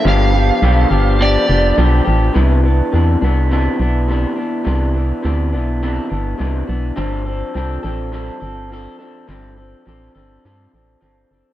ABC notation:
X:1
M:4/4
L:1/16
Q:"Swing 16ths" 1/4=104
K:C
V:1 name="Electric slide guitar"
f8 d4 z4 | z16 | z16 | z16 |
z16 |]
V:2 name="Clean electric guitar"
[G,,D,F,B,DG]2 [F,B,DG]2 [G,,D,F,B,DG]2 [F,B,DG]2 [F,B,DG]2 [F,B,DG]2 [G,,D,F,B,DG]2 [F,B,DG]2 | [C,E,B,D]2 [E,B,D]2 [C,E,B,D]2 [E,B,D]2 [C,E,B,D]2 [E,B,D]2 [C,E,B,D]2 [E,B,D]2 | [C,E,B,D]2 [E,B,D]2 [C,E,B,D]2 [E,B,D]2 [C,E,B,D]2 [E,B,D]2 [C,E,B,D]2 [E,B,D]2 | [G,,D,F,CDA]2 [F,CDA]2 [F,CDA]2 [F,CDA]2 [G,,D,F,CDA]2 [F,CDA]2 [F,CDA]2 [F,CDA]2 |
[G,,D,F,CDA]2 [F,CDA]2 [F,CDA]2 [F,CDA]2 [G,,D,F,CDA]2 [F,CDA]2 [F,CDA]2 [F,CDA]2 |]
V:3 name="FM bass" clef=bass
G,,,4 B,,,2 G,,,4 F,,,2 B,,,2 A,,,2 | C,,4 E,,2 C,,4 B,,,4 z2 | C,,4 D,,2 B,,,4 G,,,2 C,,2 B,,,2 | G,,,4 C,,2 A,,,4 G,,,4 z2 |
G,,,4 A,,,2 G,,,2 G,,2 A,,,2 G,,,2 ^F,,, z |]